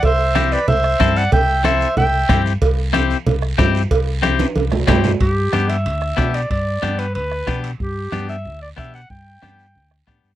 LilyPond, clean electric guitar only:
\new Staff \with { instrumentName = "Clean electric guitar" } { \time 4/4 \key g \major \tempo 4 = 185 r4 <c' e' g'>8 r4. <c' e' a'>8 r8 | r4 <c' e' a'>8 r4. <c' e' g'>8 r8 | r4 <c' e' g'>8 r4. <c' e' g'>8 r8 | r4 <c' e' g'>8 r4. <c' e' g'>8 r8 |
r4 <b d' g'>8 r4. <b d' g'>8 r8 | r4 <b d' g'>8 r4. <b d' g'>8 r8 | r4 <b d' g'>8 r4. <b d' g'>8 r8 | r4 <b d' g'>8 r4. <b d' g'>8 r8 | }